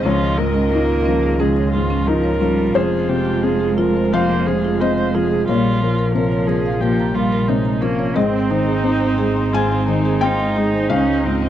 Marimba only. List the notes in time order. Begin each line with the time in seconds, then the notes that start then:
0.04 C#4
0.37 F4
0.54 C#4
0.72 F4
0.89 F4
1.05 C#4
1.23 G#4
1.40 C#4
1.57 C#5
1.73 G#4
1.90 C#4
2.07 F4
2.24 C#5
2.41 C#4
2.57 F4
2.74 F4
3.09 G#4
3.25 F4
3.43 G#4
3.60 G#4
3.78 F4
3.97 C5
4.14 F4
4.32 F5
4.48 C5
4.64 F4
4.81 G#4
4.98 F5
5.15 F4
5.32 G#4
5.48 A#4
5.82 C#5
5.99 A#4
6.16 C#5
6.32 C#5
6.49 A#4
6.66 F5
6.82 A#4
7.00 A#5
7.16 F5
7.33 A#4
7.49 C#5
7.65 A#5
7.82 A#4
7.99 C#5
8.16 G#4
8.50 C5
8.67 G#4
8.84 C5
9.01 C5
9.18 G#4
9.37 D#5
9.54 G#4
9.72 G#5
9.88 D#5
10.05 G#4
10.23 C5
10.40 G#5
10.56 G#4
10.74 C5
10.91 C#4
11.25 F4
11.42 C#4